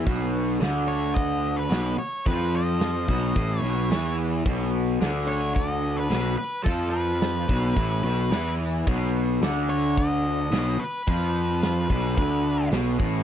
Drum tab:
HH |o-o-o-o-|o-o-o-o-|o-o-o-o-|o-o-o-o-|
SD |--o---o-|--o---o-|--o---o-|--o---o-|
BD |o---o---|o--oo---|o---o---|o--oo---|

HH |o-o-o-o-|o-o-o-o-|
SD |--o---o-|--o---o-|
BD |o---o---|o--oo--o|